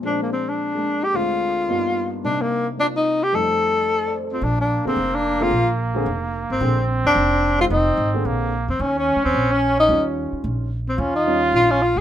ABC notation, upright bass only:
X:1
M:4/4
L:1/8
Q:"Swing" 1/4=219
K:Bbmix
V:1 name="Upright bass" clef=bass
z8 | z8 | z8 | z8 |
B,,,3 z F,,,4 | B,,,4 F,,,3 A,,, | B,,,3 F,, F,,,4 | F,,,2 A,,,2 B,,,3 =E,, |
E,,2- (3E,, F,, =E,, B,,,4 | E,,3 z B,,,4 | E,,4 B,,,3 A,,, |]